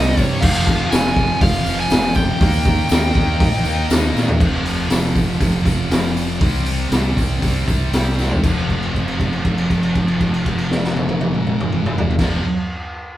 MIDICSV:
0, 0, Header, 1, 5, 480
1, 0, Start_track
1, 0, Tempo, 498753
1, 407, Time_signature, 4, 2, 24, 8
1, 5690, Tempo, 506757
1, 12568, End_track
2, 0, Start_track
2, 0, Title_t, "Lead electric guitar"
2, 0, Program_c, 0, 29
2, 0, Note_on_c, 0, 75, 110
2, 216, Note_off_c, 0, 75, 0
2, 216, Note_on_c, 0, 73, 110
2, 392, Note_on_c, 0, 77, 106
2, 412, Note_off_c, 0, 73, 0
2, 876, Note_off_c, 0, 77, 0
2, 880, Note_on_c, 0, 80, 88
2, 1363, Note_off_c, 0, 80, 0
2, 1367, Note_on_c, 0, 77, 107
2, 1729, Note_off_c, 0, 77, 0
2, 1733, Note_on_c, 0, 80, 118
2, 2060, Note_off_c, 0, 80, 0
2, 2078, Note_on_c, 0, 79, 94
2, 3718, Note_off_c, 0, 79, 0
2, 12568, End_track
3, 0, Start_track
3, 0, Title_t, "Distorted electric guitar"
3, 0, Program_c, 1, 30
3, 0, Note_on_c, 1, 48, 87
3, 0, Note_on_c, 1, 55, 89
3, 0, Note_on_c, 1, 60, 98
3, 382, Note_off_c, 1, 48, 0
3, 384, Note_on_c, 1, 41, 99
3, 394, Note_off_c, 1, 55, 0
3, 404, Note_off_c, 1, 60, 0
3, 413, Note_on_c, 1, 48, 90
3, 425, Note_on_c, 1, 53, 112
3, 615, Note_off_c, 1, 53, 0
3, 626, Note_on_c, 1, 53, 73
3, 654, Note_off_c, 1, 48, 0
3, 666, Note_on_c, 1, 48, 51
3, 849, Note_off_c, 1, 41, 0
3, 861, Note_on_c, 1, 41, 86
3, 877, Note_off_c, 1, 48, 0
3, 889, Note_on_c, 1, 48, 94
3, 895, Note_off_c, 1, 53, 0
3, 906, Note_on_c, 1, 53, 86
3, 1085, Note_off_c, 1, 53, 0
3, 1097, Note_on_c, 1, 53, 81
3, 1125, Note_off_c, 1, 48, 0
3, 1137, Note_on_c, 1, 48, 60
3, 1350, Note_off_c, 1, 41, 0
3, 1569, Note_off_c, 1, 53, 0
3, 1580, Note_on_c, 1, 53, 69
3, 1616, Note_off_c, 1, 48, 0
3, 1627, Note_on_c, 1, 48, 60
3, 1810, Note_on_c, 1, 41, 90
3, 1824, Note_off_c, 1, 48, 0
3, 1836, Note_on_c, 1, 48, 106
3, 1843, Note_off_c, 1, 53, 0
3, 1855, Note_on_c, 1, 53, 103
3, 2282, Note_off_c, 1, 48, 0
3, 2286, Note_on_c, 1, 51, 86
3, 2289, Note_off_c, 1, 41, 0
3, 2311, Note_off_c, 1, 53, 0
3, 2316, Note_on_c, 1, 58, 96
3, 2327, Note_on_c, 1, 63, 101
3, 2510, Note_off_c, 1, 63, 0
3, 2522, Note_on_c, 1, 63, 65
3, 2558, Note_off_c, 1, 58, 0
3, 2570, Note_on_c, 1, 58, 60
3, 2754, Note_off_c, 1, 51, 0
3, 2765, Note_on_c, 1, 51, 88
3, 2772, Note_off_c, 1, 58, 0
3, 2784, Note_on_c, 1, 58, 86
3, 2792, Note_off_c, 1, 63, 0
3, 2804, Note_on_c, 1, 63, 98
3, 3003, Note_off_c, 1, 63, 0
3, 3014, Note_on_c, 1, 63, 71
3, 3045, Note_off_c, 1, 58, 0
3, 3056, Note_on_c, 1, 58, 60
3, 3261, Note_off_c, 1, 51, 0
3, 3491, Note_off_c, 1, 63, 0
3, 3502, Note_on_c, 1, 63, 71
3, 3530, Note_off_c, 1, 58, 0
3, 3541, Note_on_c, 1, 58, 60
3, 3753, Note_on_c, 1, 51, 92
3, 3757, Note_off_c, 1, 58, 0
3, 3769, Note_on_c, 1, 58, 88
3, 3776, Note_off_c, 1, 63, 0
3, 3787, Note_on_c, 1, 63, 102
3, 4220, Note_on_c, 1, 41, 92
3, 4222, Note_off_c, 1, 51, 0
3, 4230, Note_off_c, 1, 58, 0
3, 4239, Note_off_c, 1, 63, 0
3, 4246, Note_on_c, 1, 48, 92
3, 4266, Note_on_c, 1, 53, 85
3, 4455, Note_off_c, 1, 53, 0
3, 4467, Note_on_c, 1, 53, 70
3, 4500, Note_off_c, 1, 48, 0
3, 4512, Note_on_c, 1, 48, 56
3, 4693, Note_off_c, 1, 41, 0
3, 4705, Note_on_c, 1, 41, 77
3, 4722, Note_off_c, 1, 48, 0
3, 4734, Note_on_c, 1, 48, 85
3, 4738, Note_off_c, 1, 53, 0
3, 4750, Note_on_c, 1, 53, 91
3, 5183, Note_off_c, 1, 41, 0
3, 5195, Note_on_c, 1, 41, 87
3, 5200, Note_off_c, 1, 48, 0
3, 5212, Note_on_c, 1, 48, 86
3, 5218, Note_off_c, 1, 53, 0
3, 5230, Note_on_c, 1, 53, 94
3, 5418, Note_off_c, 1, 53, 0
3, 5430, Note_on_c, 1, 53, 66
3, 5454, Note_off_c, 1, 48, 0
3, 5466, Note_on_c, 1, 48, 58
3, 5670, Note_off_c, 1, 41, 0
3, 5682, Note_on_c, 1, 41, 72
3, 5690, Note_off_c, 1, 48, 0
3, 5701, Note_on_c, 1, 48, 69
3, 5704, Note_off_c, 1, 53, 0
3, 5715, Note_on_c, 1, 53, 82
3, 5888, Note_off_c, 1, 53, 0
3, 5900, Note_on_c, 1, 53, 75
3, 5932, Note_off_c, 1, 48, 0
3, 5944, Note_on_c, 1, 48, 65
3, 6129, Note_off_c, 1, 48, 0
3, 6138, Note_off_c, 1, 53, 0
3, 6140, Note_on_c, 1, 48, 100
3, 6149, Note_off_c, 1, 41, 0
3, 6156, Note_on_c, 1, 55, 82
3, 6174, Note_on_c, 1, 60, 89
3, 6367, Note_off_c, 1, 60, 0
3, 6379, Note_on_c, 1, 60, 72
3, 6409, Note_off_c, 1, 55, 0
3, 6421, Note_on_c, 1, 55, 49
3, 6604, Note_off_c, 1, 48, 0
3, 6615, Note_on_c, 1, 48, 81
3, 6626, Note_off_c, 1, 55, 0
3, 6637, Note_on_c, 1, 55, 84
3, 6647, Note_off_c, 1, 60, 0
3, 6658, Note_on_c, 1, 60, 80
3, 7085, Note_off_c, 1, 48, 0
3, 7096, Note_on_c, 1, 48, 94
3, 7118, Note_off_c, 1, 55, 0
3, 7129, Note_on_c, 1, 55, 92
3, 7131, Note_off_c, 1, 60, 0
3, 7143, Note_on_c, 1, 60, 100
3, 7328, Note_off_c, 1, 60, 0
3, 7339, Note_on_c, 1, 60, 67
3, 7372, Note_off_c, 1, 55, 0
3, 7383, Note_on_c, 1, 55, 59
3, 7571, Note_off_c, 1, 48, 0
3, 7583, Note_on_c, 1, 48, 59
3, 7593, Note_off_c, 1, 55, 0
3, 7605, Note_on_c, 1, 55, 77
3, 7613, Note_off_c, 1, 60, 0
3, 7624, Note_on_c, 1, 60, 78
3, 7809, Note_off_c, 1, 60, 0
3, 7821, Note_on_c, 1, 60, 71
3, 7855, Note_off_c, 1, 55, 0
3, 7866, Note_on_c, 1, 55, 50
3, 8057, Note_off_c, 1, 60, 0
3, 8058, Note_off_c, 1, 48, 0
3, 8062, Note_on_c, 1, 41, 78
3, 8078, Note_on_c, 1, 48, 81
3, 8080, Note_off_c, 1, 55, 0
3, 8101, Note_on_c, 1, 53, 86
3, 11571, Note_off_c, 1, 41, 0
3, 11579, Note_off_c, 1, 48, 0
3, 11591, Note_off_c, 1, 53, 0
3, 11632, Note_on_c, 1, 41, 77
3, 11652, Note_on_c, 1, 48, 85
3, 11668, Note_on_c, 1, 53, 97
3, 11852, Note_off_c, 1, 41, 0
3, 11862, Note_off_c, 1, 48, 0
3, 11870, Note_off_c, 1, 53, 0
3, 12568, End_track
4, 0, Start_track
4, 0, Title_t, "Fingered electric bass"
4, 0, Program_c, 2, 33
4, 0, Note_on_c, 2, 36, 103
4, 124, Note_off_c, 2, 36, 0
4, 169, Note_on_c, 2, 43, 82
4, 362, Note_off_c, 2, 43, 0
4, 408, Note_on_c, 2, 29, 100
4, 794, Note_off_c, 2, 29, 0
4, 888, Note_on_c, 2, 29, 80
4, 1273, Note_off_c, 2, 29, 0
4, 1355, Note_on_c, 2, 29, 93
4, 1551, Note_off_c, 2, 29, 0
4, 1596, Note_on_c, 2, 29, 97
4, 1792, Note_off_c, 2, 29, 0
4, 1836, Note_on_c, 2, 29, 105
4, 2225, Note_off_c, 2, 29, 0
4, 2315, Note_on_c, 2, 39, 96
4, 2704, Note_off_c, 2, 39, 0
4, 2800, Note_on_c, 2, 39, 93
4, 2992, Note_off_c, 2, 39, 0
4, 3032, Note_on_c, 2, 39, 94
4, 3228, Note_off_c, 2, 39, 0
4, 3276, Note_on_c, 2, 34, 92
4, 3470, Note_off_c, 2, 34, 0
4, 3515, Note_on_c, 2, 39, 95
4, 3710, Note_off_c, 2, 39, 0
4, 3750, Note_on_c, 2, 39, 93
4, 3948, Note_off_c, 2, 39, 0
4, 3995, Note_on_c, 2, 46, 74
4, 4191, Note_off_c, 2, 46, 0
4, 4238, Note_on_c, 2, 29, 95
4, 4672, Note_off_c, 2, 29, 0
4, 4729, Note_on_c, 2, 29, 91
4, 4942, Note_off_c, 2, 29, 0
4, 4966, Note_on_c, 2, 29, 81
4, 5182, Note_off_c, 2, 29, 0
4, 5204, Note_on_c, 2, 29, 96
4, 5421, Note_off_c, 2, 29, 0
4, 5442, Note_on_c, 2, 29, 87
4, 5662, Note_off_c, 2, 29, 0
4, 5691, Note_on_c, 2, 29, 78
4, 6119, Note_off_c, 2, 29, 0
4, 6157, Note_on_c, 2, 36, 92
4, 6591, Note_off_c, 2, 36, 0
4, 6640, Note_on_c, 2, 36, 87
4, 6857, Note_off_c, 2, 36, 0
4, 6879, Note_on_c, 2, 36, 84
4, 7097, Note_off_c, 2, 36, 0
4, 7122, Note_on_c, 2, 36, 84
4, 7338, Note_off_c, 2, 36, 0
4, 7361, Note_on_c, 2, 36, 82
4, 7577, Note_off_c, 2, 36, 0
4, 7592, Note_on_c, 2, 36, 84
4, 8028, Note_off_c, 2, 36, 0
4, 8081, Note_on_c, 2, 29, 90
4, 11543, Note_off_c, 2, 29, 0
4, 11630, Note_on_c, 2, 29, 88
4, 11836, Note_off_c, 2, 29, 0
4, 12568, End_track
5, 0, Start_track
5, 0, Title_t, "Drums"
5, 169, Note_on_c, 9, 36, 84
5, 170, Note_on_c, 9, 54, 72
5, 265, Note_off_c, 9, 36, 0
5, 266, Note_off_c, 9, 54, 0
5, 408, Note_on_c, 9, 36, 124
5, 409, Note_on_c, 9, 49, 123
5, 505, Note_off_c, 9, 36, 0
5, 505, Note_off_c, 9, 49, 0
5, 524, Note_on_c, 9, 54, 77
5, 620, Note_off_c, 9, 54, 0
5, 646, Note_on_c, 9, 36, 94
5, 653, Note_on_c, 9, 54, 83
5, 742, Note_off_c, 9, 36, 0
5, 749, Note_off_c, 9, 54, 0
5, 885, Note_on_c, 9, 46, 62
5, 888, Note_on_c, 9, 54, 109
5, 891, Note_on_c, 9, 38, 118
5, 981, Note_off_c, 9, 46, 0
5, 984, Note_off_c, 9, 54, 0
5, 987, Note_off_c, 9, 38, 0
5, 1121, Note_on_c, 9, 36, 95
5, 1140, Note_on_c, 9, 54, 27
5, 1217, Note_off_c, 9, 36, 0
5, 1236, Note_off_c, 9, 54, 0
5, 1357, Note_on_c, 9, 46, 73
5, 1360, Note_on_c, 9, 36, 127
5, 1374, Note_on_c, 9, 54, 30
5, 1453, Note_off_c, 9, 46, 0
5, 1456, Note_off_c, 9, 36, 0
5, 1471, Note_off_c, 9, 54, 0
5, 1497, Note_on_c, 9, 54, 31
5, 1593, Note_off_c, 9, 54, 0
5, 1600, Note_on_c, 9, 54, 82
5, 1697, Note_off_c, 9, 54, 0
5, 1828, Note_on_c, 9, 54, 93
5, 1838, Note_on_c, 9, 46, 61
5, 1844, Note_on_c, 9, 38, 124
5, 1925, Note_off_c, 9, 54, 0
5, 1934, Note_off_c, 9, 46, 0
5, 1940, Note_off_c, 9, 38, 0
5, 2066, Note_on_c, 9, 54, 79
5, 2078, Note_on_c, 9, 36, 88
5, 2162, Note_off_c, 9, 54, 0
5, 2174, Note_off_c, 9, 36, 0
5, 2311, Note_on_c, 9, 54, 23
5, 2318, Note_on_c, 9, 36, 127
5, 2324, Note_on_c, 9, 46, 71
5, 2408, Note_off_c, 9, 54, 0
5, 2415, Note_off_c, 9, 36, 0
5, 2420, Note_off_c, 9, 46, 0
5, 2428, Note_on_c, 9, 54, 70
5, 2524, Note_off_c, 9, 54, 0
5, 2544, Note_on_c, 9, 54, 73
5, 2556, Note_on_c, 9, 36, 92
5, 2640, Note_off_c, 9, 54, 0
5, 2652, Note_off_c, 9, 36, 0
5, 2780, Note_on_c, 9, 54, 102
5, 2799, Note_on_c, 9, 46, 66
5, 2805, Note_on_c, 9, 38, 122
5, 2877, Note_off_c, 9, 54, 0
5, 2895, Note_off_c, 9, 46, 0
5, 2901, Note_off_c, 9, 38, 0
5, 2912, Note_on_c, 9, 54, 27
5, 3008, Note_off_c, 9, 54, 0
5, 3028, Note_on_c, 9, 54, 25
5, 3035, Note_on_c, 9, 36, 97
5, 3125, Note_off_c, 9, 54, 0
5, 3131, Note_off_c, 9, 36, 0
5, 3275, Note_on_c, 9, 54, 26
5, 3276, Note_on_c, 9, 36, 122
5, 3276, Note_on_c, 9, 46, 72
5, 3371, Note_off_c, 9, 54, 0
5, 3372, Note_off_c, 9, 36, 0
5, 3372, Note_off_c, 9, 46, 0
5, 3396, Note_on_c, 9, 54, 32
5, 3493, Note_off_c, 9, 54, 0
5, 3513, Note_on_c, 9, 54, 77
5, 3609, Note_off_c, 9, 54, 0
5, 3643, Note_on_c, 9, 54, 30
5, 3739, Note_off_c, 9, 54, 0
5, 3755, Note_on_c, 9, 54, 109
5, 3757, Note_on_c, 9, 46, 69
5, 3763, Note_on_c, 9, 38, 127
5, 3852, Note_off_c, 9, 54, 0
5, 3853, Note_off_c, 9, 46, 0
5, 3859, Note_off_c, 9, 38, 0
5, 4006, Note_on_c, 9, 38, 61
5, 4011, Note_on_c, 9, 54, 74
5, 4102, Note_off_c, 9, 38, 0
5, 4107, Note_off_c, 9, 54, 0
5, 4120, Note_on_c, 9, 43, 97
5, 4216, Note_off_c, 9, 43, 0
5, 4239, Note_on_c, 9, 36, 113
5, 4242, Note_on_c, 9, 49, 98
5, 4248, Note_on_c, 9, 54, 29
5, 4336, Note_off_c, 9, 36, 0
5, 4338, Note_off_c, 9, 49, 0
5, 4345, Note_off_c, 9, 54, 0
5, 4479, Note_on_c, 9, 46, 56
5, 4486, Note_on_c, 9, 54, 29
5, 4575, Note_off_c, 9, 46, 0
5, 4583, Note_off_c, 9, 54, 0
5, 4715, Note_on_c, 9, 46, 78
5, 4721, Note_on_c, 9, 38, 106
5, 4725, Note_on_c, 9, 54, 104
5, 4811, Note_off_c, 9, 46, 0
5, 4817, Note_off_c, 9, 38, 0
5, 4821, Note_off_c, 9, 54, 0
5, 4962, Note_on_c, 9, 36, 96
5, 4965, Note_on_c, 9, 54, 80
5, 4966, Note_on_c, 9, 46, 57
5, 5058, Note_off_c, 9, 36, 0
5, 5062, Note_off_c, 9, 46, 0
5, 5062, Note_off_c, 9, 54, 0
5, 5201, Note_on_c, 9, 46, 72
5, 5203, Note_on_c, 9, 36, 93
5, 5209, Note_on_c, 9, 54, 70
5, 5297, Note_off_c, 9, 46, 0
5, 5299, Note_off_c, 9, 36, 0
5, 5305, Note_off_c, 9, 54, 0
5, 5442, Note_on_c, 9, 36, 80
5, 5442, Note_on_c, 9, 46, 56
5, 5453, Note_on_c, 9, 54, 76
5, 5538, Note_off_c, 9, 46, 0
5, 5539, Note_off_c, 9, 36, 0
5, 5550, Note_off_c, 9, 54, 0
5, 5688, Note_on_c, 9, 46, 78
5, 5693, Note_on_c, 9, 38, 114
5, 5697, Note_on_c, 9, 54, 100
5, 5782, Note_off_c, 9, 46, 0
5, 5788, Note_off_c, 9, 38, 0
5, 5791, Note_off_c, 9, 54, 0
5, 5931, Note_on_c, 9, 46, 54
5, 5931, Note_on_c, 9, 54, 71
5, 6025, Note_off_c, 9, 46, 0
5, 6025, Note_off_c, 9, 54, 0
5, 6160, Note_on_c, 9, 46, 74
5, 6162, Note_on_c, 9, 36, 122
5, 6168, Note_on_c, 9, 54, 27
5, 6255, Note_off_c, 9, 46, 0
5, 6257, Note_off_c, 9, 36, 0
5, 6263, Note_off_c, 9, 54, 0
5, 6396, Note_on_c, 9, 46, 55
5, 6414, Note_on_c, 9, 54, 27
5, 6490, Note_off_c, 9, 46, 0
5, 6508, Note_off_c, 9, 54, 0
5, 6639, Note_on_c, 9, 46, 72
5, 6645, Note_on_c, 9, 38, 106
5, 6648, Note_on_c, 9, 54, 99
5, 6734, Note_off_c, 9, 46, 0
5, 6740, Note_off_c, 9, 38, 0
5, 6743, Note_off_c, 9, 54, 0
5, 6882, Note_on_c, 9, 36, 85
5, 6886, Note_on_c, 9, 46, 65
5, 6889, Note_on_c, 9, 54, 70
5, 6977, Note_off_c, 9, 36, 0
5, 6981, Note_off_c, 9, 46, 0
5, 6984, Note_off_c, 9, 54, 0
5, 7122, Note_on_c, 9, 36, 91
5, 7122, Note_on_c, 9, 46, 80
5, 7124, Note_on_c, 9, 54, 72
5, 7217, Note_off_c, 9, 36, 0
5, 7217, Note_off_c, 9, 46, 0
5, 7218, Note_off_c, 9, 54, 0
5, 7362, Note_on_c, 9, 36, 92
5, 7365, Note_on_c, 9, 46, 59
5, 7365, Note_on_c, 9, 54, 77
5, 7457, Note_off_c, 9, 36, 0
5, 7460, Note_off_c, 9, 46, 0
5, 7460, Note_off_c, 9, 54, 0
5, 7601, Note_on_c, 9, 46, 79
5, 7607, Note_on_c, 9, 38, 108
5, 7608, Note_on_c, 9, 54, 94
5, 7696, Note_off_c, 9, 46, 0
5, 7702, Note_off_c, 9, 38, 0
5, 7702, Note_off_c, 9, 54, 0
5, 7844, Note_on_c, 9, 54, 80
5, 7852, Note_on_c, 9, 38, 59
5, 7939, Note_off_c, 9, 54, 0
5, 7946, Note_off_c, 9, 38, 0
5, 7961, Note_on_c, 9, 43, 78
5, 8056, Note_off_c, 9, 43, 0
5, 8079, Note_on_c, 9, 54, 74
5, 8081, Note_on_c, 9, 36, 106
5, 8082, Note_on_c, 9, 49, 89
5, 8174, Note_off_c, 9, 54, 0
5, 8176, Note_off_c, 9, 36, 0
5, 8177, Note_off_c, 9, 49, 0
5, 8323, Note_on_c, 9, 36, 56
5, 8327, Note_on_c, 9, 49, 41
5, 8417, Note_off_c, 9, 36, 0
5, 8422, Note_off_c, 9, 49, 0
5, 8448, Note_on_c, 9, 57, 40
5, 8543, Note_off_c, 9, 57, 0
5, 8564, Note_on_c, 9, 36, 52
5, 8575, Note_on_c, 9, 49, 43
5, 8659, Note_off_c, 9, 36, 0
5, 8669, Note_off_c, 9, 49, 0
5, 8688, Note_on_c, 9, 57, 45
5, 8782, Note_off_c, 9, 57, 0
5, 8802, Note_on_c, 9, 36, 62
5, 8807, Note_on_c, 9, 49, 47
5, 8897, Note_off_c, 9, 36, 0
5, 8902, Note_off_c, 9, 49, 0
5, 8924, Note_on_c, 9, 57, 41
5, 9018, Note_off_c, 9, 57, 0
5, 9037, Note_on_c, 9, 49, 45
5, 9040, Note_on_c, 9, 36, 71
5, 9132, Note_off_c, 9, 49, 0
5, 9135, Note_off_c, 9, 36, 0
5, 9161, Note_on_c, 9, 57, 48
5, 9256, Note_off_c, 9, 57, 0
5, 9280, Note_on_c, 9, 36, 62
5, 9281, Note_on_c, 9, 49, 49
5, 9374, Note_off_c, 9, 36, 0
5, 9375, Note_off_c, 9, 49, 0
5, 9399, Note_on_c, 9, 57, 51
5, 9494, Note_off_c, 9, 57, 0
5, 9515, Note_on_c, 9, 49, 45
5, 9519, Note_on_c, 9, 36, 67
5, 9610, Note_off_c, 9, 49, 0
5, 9614, Note_off_c, 9, 36, 0
5, 9636, Note_on_c, 9, 57, 43
5, 9730, Note_off_c, 9, 57, 0
5, 9756, Note_on_c, 9, 49, 47
5, 9758, Note_on_c, 9, 36, 62
5, 9850, Note_off_c, 9, 49, 0
5, 9852, Note_off_c, 9, 36, 0
5, 9881, Note_on_c, 9, 57, 44
5, 9976, Note_off_c, 9, 57, 0
5, 9995, Note_on_c, 9, 49, 52
5, 9999, Note_on_c, 9, 36, 63
5, 10090, Note_off_c, 9, 49, 0
5, 10094, Note_off_c, 9, 36, 0
5, 10113, Note_on_c, 9, 57, 50
5, 10208, Note_off_c, 9, 57, 0
5, 10236, Note_on_c, 9, 38, 79
5, 10331, Note_off_c, 9, 38, 0
5, 10357, Note_on_c, 9, 38, 77
5, 10451, Note_off_c, 9, 38, 0
5, 10476, Note_on_c, 9, 48, 81
5, 10571, Note_off_c, 9, 48, 0
5, 10591, Note_on_c, 9, 48, 91
5, 10685, Note_off_c, 9, 48, 0
5, 10706, Note_on_c, 9, 48, 97
5, 10800, Note_off_c, 9, 48, 0
5, 10835, Note_on_c, 9, 47, 73
5, 10930, Note_off_c, 9, 47, 0
5, 10950, Note_on_c, 9, 47, 92
5, 11045, Note_off_c, 9, 47, 0
5, 11081, Note_on_c, 9, 45, 105
5, 11176, Note_off_c, 9, 45, 0
5, 11195, Note_on_c, 9, 45, 93
5, 11289, Note_off_c, 9, 45, 0
5, 11323, Note_on_c, 9, 45, 101
5, 11418, Note_off_c, 9, 45, 0
5, 11439, Note_on_c, 9, 43, 106
5, 11533, Note_off_c, 9, 43, 0
5, 11556, Note_on_c, 9, 43, 92
5, 11632, Note_on_c, 9, 49, 84
5, 11635, Note_on_c, 9, 36, 98
5, 11638, Note_on_c, 9, 38, 86
5, 11651, Note_off_c, 9, 43, 0
5, 11727, Note_off_c, 9, 49, 0
5, 11730, Note_off_c, 9, 36, 0
5, 11733, Note_off_c, 9, 38, 0
5, 12568, End_track
0, 0, End_of_file